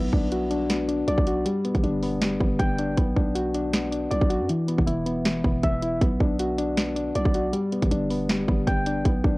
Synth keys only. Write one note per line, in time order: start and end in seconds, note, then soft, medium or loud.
0.00 0.68 B3 medium
0.13 0.49 D4 medium
0.32 1.26 F#4 medium
0.51 0.87 D4 medium
0.70 1.46 B3 medium
0.88 1.45 D4 medium
1.08 1.46 D5 loud
1.27 1.46 F#4 medium
1.45 2.21 G3 medium
1.65 2.02 B3 medium
1.83 2.78 D4 medium
2.03 2.40 B3 medium
2.22 2.98 G3 medium
2.41 2.97 B3 medium
2.59 2.97 G5 loud
2.79 2.98 D4 medium
2.98 3.73 B3 medium
3.16 3.53 D4 medium
3.35 4.28 F#4 medium
3.55 3.90 D4 medium
3.74 4.50 B3 medium
3.92 4.49 D4 medium
4.11 4.49 D5 medium
4.30 4.49 F#4 medium
4.50 5.24 E3 loud
4.68 5.05 B3 medium
4.87 5.81 E4 medium
5.06 5.43 B3 medium
5.25 6.01 E3 medium
5.44 6.00 B3 medium
5.63 6.01 E5 medium
5.82 6.01 E4 medium
6.01 6.76 B3 medium
6.21 6.57 D4 medium
6.40 7.34 F#4 medium
6.58 6.95 D4 medium
6.77 7.53 B3 medium
6.96 7.53 D4 medium
7.15 7.53 D5 loud
7.35 7.54 F#4 medium
7.53 8.28 G3 medium
7.72 8.09 B3 medium
7.91 8.86 D4 medium
8.11 8.48 B3 medium
8.29 9.05 G3 medium
8.49 9.04 B3 medium
8.67 9.05 G5 loud
8.87 9.05 D4 medium
9.05 9.38 B3 medium
9.24 9.38 D4 medium